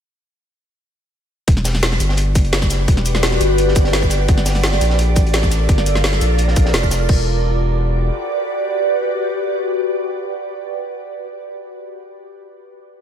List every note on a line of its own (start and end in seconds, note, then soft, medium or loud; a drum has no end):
1.48 1.99 E1 loud
1.48 4.26 F#4 medium
1.48 4.26 G4 medium
1.48 4.26 B4 medium
1.48 7.05 D5 medium
1.48 kick loud
1.48 closed hi-hat medium
1.57 snare soft
1.64 snare medium
1.64 closed hi-hat loud
1.64 open hi-hat medium
1.64 cabasa medium
1.75 snare soft
1.83 snare loud
1.83 closed hi-hat medium
1.92 snare medium
1.92 snare soft
2.00 2.37 G1 loud
2.00 closed hi-hat medium
2.00 cabasa medium
2.09 snare medium
2.17 closed hi-hat medium
2.17 cabasa soft
2.35 2.87 F#1 medium
2.35 kick loud
2.35 closed hi-hat loud
2.35 closed hi-hat medium
2.35 cabasa medium
2.45 closed hi-hat soft
2.52 snare loud
2.52 closed hi-hat medium
2.62 kick medium
2.62 snare soft
2.62 cabasa soft
2.70 snare soft
2.70 closed hi-hat medium
2.70 cabasa medium
2.88 3.39 E1 loud
2.88 kick loud
2.88 closed hi-hat medium
2.97 snare soft
3.06 closed hi-hat loud
3.06 closed hi-hat medium
3.06 cabasa medium
3.15 snare soft
3.23 snare loud
3.23 closed hi-hat medium
3.32 snare soft
3.41 3.74 G1 loud
3.41 closed hi-hat medium
3.41 cabasa medium
3.58 closed hi-hat medium
3.58 cabasa soft
3.68 snare soft
3.75 4.27 G1 medium
3.75 kick loud
3.75 closed hi-hat medium
3.75 closed hi-hat loud
3.75 cabasa medium
3.84 snare medium
3.93 snare loud
3.93 closed hi-hat medium
4.03 kick medium
4.03 cabasa soft
4.10 snare soft
4.10 closed hi-hat medium
4.10 cabasa medium
4.28 4.80 G1 loud
4.28 7.06 F4 medium
4.28 7.06 A4 medium
4.28 7.06 A#4 medium
4.28 kick loud
4.28 closed hi-hat medium
4.38 snare soft
4.46 snare medium
4.46 closed hi-hat medium
4.46 open hi-hat medium
4.46 cabasa medium
4.55 snare soft
4.63 snare loud
4.63 closed hi-hat medium
4.73 snare medium
4.73 snare soft
4.81 5.18 A#1 loud
4.81 closed hi-hat medium
4.81 cabasa medium
4.90 snare medium
4.99 closed hi-hat medium
4.99 cabasa soft
5.16 5.67 A1 medium
5.16 kick loud
5.16 closed hi-hat medium
5.16 cabasa medium
5.26 closed hi-hat soft
5.34 snare loud
5.34 closed hi-hat medium
5.43 kick medium
5.43 snare soft
5.43 cabasa soft
5.51 snare soft
5.51 closed hi-hat medium
5.51 cabasa medium
5.69 6.20 G1 medium
5.69 kick loud
5.69 closed hi-hat medium
5.78 snare soft
5.86 closed hi-hat medium
5.86 cabasa medium
5.95 snare soft
6.04 snare loud
6.04 closed hi-hat medium
6.13 snare soft
6.21 6.55 A#1 loud
6.21 closed hi-hat medium
6.21 cabasa medium
6.38 closed hi-hat loud
6.38 closed hi-hat medium
6.38 cabasa soft
6.48 snare soft
6.56 6.73 A#1 medium
6.56 kick loud
6.56 closed hi-hat medium
6.56 cabasa medium
6.66 snare medium
6.74 7.08 F1 medium
6.74 snare loud
6.74 closed hi-hat medium
6.83 kick medium
6.83 cabasa soft
6.91 snare medium
6.91 closed hi-hat medium
6.91 cabasa medium
7.09 8.10 E1 medium
7.09 10.66 F#4 medium
7.09 10.66 G4 medium
7.09 10.66 B4 medium
7.09 10.66 D5 medium
7.09 kick loud
7.09 crash medium